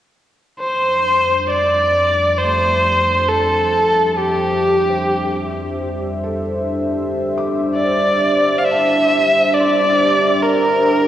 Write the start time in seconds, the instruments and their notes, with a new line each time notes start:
0.59 analog synth pad F2, electric violin C5
0.73 analog synth pad D4
1.00 analog synth pad G3
1.20 analog synth pad C5
1.49 electric violin D5
1.68 analog synth pad G4
2.39 electric violin C5
2.43 felt piano A3
3.19 analog synth pad E5
3.29 electric violin A4
4.18 electric violin G4
4.89 felt piano C5
6.24 felt piano A4
7.38 felt piano D6
7.75 electric violin D5
8.59 electric violin F5
8.65 electric violin E5
8.71 felt piano A5
9.53 electric violin D5
9.60 felt piano C6
10.43 electric violin A#4